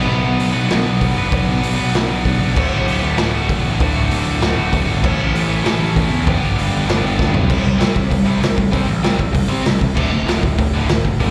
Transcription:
Already playing: distorted electric guitar B2 F#3 B3 D4 F#4 B4
0.09 picked electric bass B1
0.24 picked electric bass B1
0.39 picked electric bass B1, open hi-hat
0.52 picked electric bass B1, distorted electric guitar B2 F#3 B3 D4 F#4 B4
0.70 picked electric bass B1, snare, open hi-hat
0.86 picked electric bass B1
1.01 picked electric bass B1, kick, open hi-hat
1.14 picked electric bass F#1, distorted electric guitar B2 F#3 B3 D4 F#4 B4
1.32 picked electric bass B1, kick, open hi-hat
1.47 picked electric bass B1
1.63 picked electric bass B1, open hi-hat
1.76 picked electric bass B1, distorted electric guitar B2 F#3 B3 D4 F#4 B4
1.94 picked electric bass B1, snare, open hi-hat
2.10 picked electric bass B1
2.25 picked electric bass B1, kick, open hi-hat
2.42 picked electric bass B1
2.54 picked electric bass D1, distorted electric guitar D2 A2 D3 A3 F#4, kick, crash
2.74 picked electric bass D1
2.88 picked electric bass D1, open hi-hat
3.03 picked electric bass D1
3.17 picked electric bass D1, distorted electric guitar D2 A2 D3 A3 F#4, snare, open hi-hat
3.34 picked electric bass D1
3.49 picked electric bass D1, kick, open hi-hat
3.65 picked electric bass A1
3.79 picked electric bass D1, distorted electric guitar D2 A2 D3 A3 F#4, kick, open hi-hat
3.96 picked electric bass D1
4.11 picked electric bass D1, open hi-hat
4.26 picked electric bass D1
4.41 picked electric bass D1, distorted electric guitar D2 A2 D3 A3 F#4, snare, open hi-hat
4.57 picked electric bass D1
4.73 picked electric bass D1, kick, open hi-hat
4.89 picked electric bass G1
5.02 picked electric bass A1, distorted electric guitar A2 E3 A3 C#4 E4 A4, kick, crash
5.20 picked electric bass A1
5.34 picked electric bass A1, open hi-hat
5.50 picked electric bass A1
5.63 picked electric bass A1, distorted electric guitar A2 E3 A3 C#4 E4 A4, snare, open hi-hat
5.81 picked electric bass A1
5.96 picked electric bass A1, kick, open hi-hat
6.10 picked electric bass E2
6.25 picked electric bass G1, distorted electric guitar G2 D3 G3 B3 D4 G4, kick, open hi-hat
6.42 picked electric bass G1
6.58 picked electric bass G1, open hi-hat
6.72 picked electric bass G1
6.85 picked electric bass G1, distorted electric guitar G2 D3 G3 B3 D4 G4, open hi-hat
6.90 snare
7.04 picked electric bass G1
7.19 picked electric bass G1, kick, snare
7.34 picked electric bass B1, floor tom
7.47 picked electric bass C2, distorted electric guitar C3 G3 C4, kick, crash
7.64 picked electric bass C2, distorted electric guitar C3 G3
7.78 picked electric bass C2, distorted electric guitar C3 G3 C4, snare, open hi-hat
7.94 picked electric bass C2, distorted electric guitar C3 G3, kick
8.10 picked electric bass C2, distorted electric guitar C3 G3, kick, open hi-hat
8.25 distorted electric guitar C3 G3 C4
8.41 picked electric bass C2, distorted electric guitar C3 G3, snare, open hi-hat
8.57 picked electric bass A2, distorted electric guitar C3 G3, kick
8.71 picked electric bass C2, distorted electric guitar C3 G3 C4, kick, open hi-hat
8.88 picked electric bass A1, distorted electric guitar C3 G3
9.03 picked electric bass C2, distorted electric guitar C3 G3 C4, snare, open hi-hat
9.17 picked electric bass C2, distorted electric guitar C3 G3, kick
9.32 picked electric bass C2, distorted electric guitar C3 G3, kick, open hi-hat
9.48 distorted electric guitar C3 G3 C4, picked electric bass C3
9.63 picked electric bass C2, distorted electric guitar C3 G3, snare, open hi-hat
9.79 picked electric bass C2, distorted electric guitar C3 G3, kick
9.95 picked electric bass D1, distorted electric guitar D2 A2 D3, kick, crash
10.11 picked electric bass D1, distorted electric guitar D2 A2
10.26 picked electric bass D1, distorted electric guitar D2 A2 D3, snare, open hi-hat
10.41 picked electric bass D1, distorted electric guitar D2 A2, kick
10.58 picked electric bass D1, distorted electric guitar D2 A2, kick, open hi-hat
10.74 distorted electric guitar D2 A2 D3
10.88 picked electric bass D1, distorted electric guitar D2 A2, snare, open hi-hat
11.04 picked electric bass F#1, distorted electric guitar D2 A2, kick
11.19 picked electric bass G1, distorted electric guitar G2 D3 G3, kick, open hi-hat

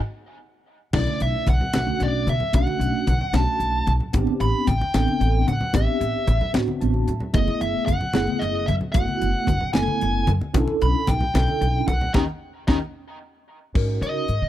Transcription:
0.93 upright bass B1, tine electric piano A3 C#4 D4 E4, lead electric guitar D5, kick, crash, muted conga, low conga
1.07 high conga
1.20 upright bass B1, lead electric guitar E5, closed hi-hat, low conga
1.47 upright bass B1, lead electric guitar F#5, kick, closed hi-hat, high conga, low conga
1.61 low conga
1.73 upright bass B1, tine electric piano A3 C#4 D4 F#4, snare, closed hi-hat, muted conga
1.87 high conga
2.00 upright bass B1, lead electric guitar D5, closed hi-hat
2.27 upright bass B2, lead electric guitar E5, closed hi-hat, high conga, low conga
2.40 low conga
2.53 upright bass B1, tine electric piano A3 C#4 D4 F#4, lead electric guitar F#5, kick, closed hi-hat, muted conga, low conga
2.67 high conga
2.80 upright bass B1, closed hi-hat, low conga
3.07 upright bass B1, kick, closed hi-hat, high conga, low conga
3.21 low conga
3.33 upright bass B1, tine electric piano A3 C#4 D4 F#4, lead electric guitar A5, snare, closed hi-hat, muted conga
3.60 upright bass B1, closed hi-hat
3.87 upright bass B1, closed hi-hat, high conga, low conga
4.00 low conga
4.13 upright bass A1, tine electric piano B3 C4 D4 G4, kick, closed hi-hat, muted conga, low conga
4.27 high conga
4.40 upright bass A1, lead electric guitar B5, closed hi-hat, low conga
4.67 upright bass A1, lead electric guitar G5, kick, closed hi-hat, high conga, low conga
4.81 low conga
4.94 upright bass A1, tine electric piano B3 C4 D4 A4, snare, closed hi-hat, muted conga
5.08 high conga
5.21 upright bass A1, closed hi-hat
5.48 upright bass A2, lead electric guitar F#5, closed hi-hat, high conga, low conga
5.61 low conga
5.73 upright bass A1, tine electric piano B3 C4 D4 G4, lead electric guitar E5, kick, closed hi-hat, muted conga
6.01 upright bass A1, closed hi-hat
6.27 upright bass A1, kick, closed hi-hat, high conga
6.41 low conga
6.53 upright bass A1, tine electric piano B3 C4 D4 F#4, snare, closed hi-hat, muted conga, low conga
6.68 high conga
6.81 upright bass A1, tine electric piano A5, closed hi-hat
6.94 high conga
7.08 upright bass A2, closed hi-hat, low conga
7.20 low conga
7.33 upright bass F#1, tine electric piano A3 B3 E4 G#4, lead electric guitar D#5, kick, closed hi-hat, muted conga, low conga
7.48 high conga
7.61 upright bass F#1, lead electric guitar E5, closed hi-hat, low conga
7.86 upright bass F#1, lead electric guitar F#5, kick, closed hi-hat, high conga, low conga
8.01 low conga
8.13 upright bass F#1, tine electric piano A3 B3 E4 G#4, snare, closed hi-hat, muted conga
8.27 high conga
8.39 upright bass F#1, lead electric guitar D#5, closed hi-hat
8.66 upright bass F#2, lead electric guitar E5, closed hi-hat, high conga, low conga
8.81 low conga
8.92 upright bass F#1, tine electric piano A3 B3 E4 F#4, lead electric guitar F#5, kick, closed hi-hat, muted conga, low conga
9.08 high conga
9.21 upright bass F#1, closed hi-hat, low conga
9.47 upright bass F#1, kick, closed hi-hat, high conga, low conga
9.61 low conga
9.73 upright bass F#1, tine electric piano A3 B3 E4 A4, lead electric guitar G#5, snare, closed hi-hat, muted conga
9.88 high conga
10.01 upright bass F#1, closed hi-hat
10.27 upright bass F#2, closed hi-hat, high conga, low conga
10.41 low conga
10.53 upright bass B1, tine electric piano C#4 D4 E4 A4, kick, closed hi-hat, muted conga, low conga
10.68 high conga
10.80 upright bass B1, lead electric guitar B5, closed hi-hat, low conga
11.07 upright bass B1, lead electric guitar G5, kick, closed hi-hat, high conga, low conga
11.21 low conga
11.34 upright bass B1, tine electric piano C#4 D4 E4 A4, snare, closed hi-hat, muted conga
11.48 high conga
11.61 upright bass B1, closed hi-hat
11.88 upright bass B1, lead electric guitar F#5, closed hi-hat, high conga, low conga
12.01 low conga
12.14 upright bass D#2, tine electric piano C#4 D#4 G4, lead electric guitar D#5 G5 A#5, kick, snare, muted conga
12.68 upright bass D#2, tine electric piano C#4 D#4 G4, lead electric guitar D#5 G5 A#5, kick, snare, muted conga
13.74 upright bass G#2, tine electric piano C#4 D#4 F#4 A#4, kick, crash
14.01 upright bass C#3, lead electric guitar D#5, closed hi-hat
14.28 upright bass G#2, closed hi-hat
14.42 upright bass C#3

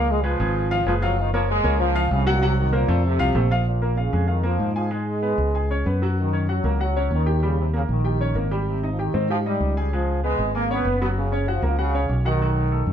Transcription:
Already playing: fingered electric bass C#2, grand piano F3 F4 F5
0.10 trombone section G#3
0.23 trombone section F3, grand piano G#3 G#4 B4
0.40 fingered electric bass G#1, grand piano G#3 G#4 B4
0.71 grand piano F3 F4 F5
0.86 fingered electric bass F#1, trombone section F3, grand piano G#3 G#4 B4
1.02 grand piano F3 F4 F5, trombone section F#3
1.19 trombone section D#3
1.33 trombone section F3, grand piano A#3 A#4 C#5
1.50 trombone section G#3
1.64 fingered electric bass C#2, grand piano A#3 A#4 C#5
1.80 trombone section F3
1.95 grand piano F3 F4 F5
2.11 fingered electric bass C2, trombone section C#3
2.26 trombone section A#2, grand piano F#3 F#4 F#5
2.42 trombone section C3, grand piano F#3 F#4 F#5
2.58 trombone section D#3
2.72 trombone section A#2, grand piano A#3 A#4 C5
2.88 fingered electric bass F2, grand piano A3 A4 C5
3.05 trombone section C3
3.19 fingered electric bass C2, grand piano F3 F4 F5
3.35 fingered electric bass A#1, grand piano A3 A4 C5
3.51 grand piano F3 F4 F5
3.67 trombone section A#2
3.82 grand piano A#3 A#4
3.97 trombone section C#3, grand piano F4 F5
4.13 fingered electric bass F2, grand piano G#3 G#4
4.27 trombone section D#3, grand piano F4 F5
4.43 trombone section F3, grand piano A#3 A#4
4.60 fingered electric bass G#2
4.75 trombone section F3, grand piano G#4 G#5
4.91 grand piano G#3 G#4, trombone section G#3
5.22 grand piano B3 B4
5.38 fingered electric bass C#2
5.55 grand piano G#4 G#5
5.71 grand piano C#4 C#5
5.86 fingered electric bass F#2, grand piano B3 B4
6.02 grand piano F#3 F#4
6.20 trombone section D#3
6.33 grand piano C#4 C#5
6.49 trombone section F#3, grand piano F#4 F#5
6.64 fingered electric bass C#2, grand piano A#3 A#4
6.80 trombone section F#3, grand piano F#4 F#5
6.96 grand piano C#4 C#5
7.11 fingered electric bass D#2, trombone section D#3
7.26 grand piano G4 G5
7.43 trombone section C#3, grand piano G3 G4
7.61 trombone section C3
7.73 trombone section C#3, grand piano A#3 A#4
7.89 fingered electric bass A#1, trombone section D#3
8.04 grand piano G4 G5
8.21 grand piano C#4 C#5
8.35 fingered electric bass G#1, grand piano A#3 A#4
8.51 grand piano G3 G4
8.68 trombone section C3
8.83 grand piano D#4 D#5
8.92 trombone section F3
8.99 trombone section D#3, grand piano G4 G5
9.14 fingered electric bass G#2, grand piano C4 C5
9.30 trombone section F3, grand piano G4 G5
9.46 trombone section G3, grand piano D#4 D#5
9.60 fingered electric bass C#2
9.77 trombone section G3, grand piano G#4 G#5
9.93 trombone section F3, grand piano G#3 G#4
10.24 trombone section G#3, grand piano B3 B4
10.38 fingered electric bass G#1
10.55 trombone section A#3, grand piano G#4 G#5
10.71 trombone section B3, grand piano C#4 C#5
10.85 fingered electric bass F#1, grand piano B3 B4
11.02 grand piano F#3 F#4, trombone section B3
11.17 trombone section C#3
11.32 grand piano C#4 C#5
11.48 trombone section F3, grand piano F#4 F#5
11.62 fingered electric bass C#2, grand piano A#3 A#4
11.69 trombone section F3
11.79 trombone section C#3, grand piano F#4 F#5
11.95 grand piano C#4 C#5
12.09 fingered electric bass B1
12.25 trombone section D#3, grand piano F#4 F#5
12.42 grand piano F#3 F#4
12.72 grand piano A3 A4
12.86 fingered electric bass F#2

